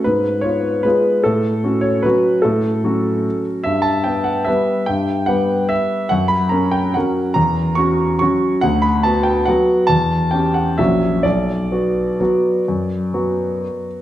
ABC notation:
X:1
M:3/4
L:1/8
Q:1/4=144
K:Bm
V:1 name="Grand piano"
_c2 ^c2 _c2 | A3 c B2 | A4- A z | e a g f e2 |
g2 f2 e2 | f b ^a g f2 | ^a2 c'2 c'2 | f b a g f2 |
a2 g f e2 | d6- | d4- d z |]
V:2 name="Grand piano"
_A,,2 [_C=F]2 [_A,CF]2 | A,,2 [CF]2 [F,CF]2 | A,,2 [F,CF]4 | G,,2 [B,B]2 [G,B,B]2 |
G,,2 [G,B,B]4 | F,,2 [C^A]2 [F,CA]2 | E,,2 [CF]2 [F,CF]2 | D,,2 [B,F]2 [F,B,F]2 |
E,,2 [CG]2 [^A,,,F,CF]2 | B,,,2 [B,F]2 [F,B,F]2 | F,,2 [F,B,F]4 |]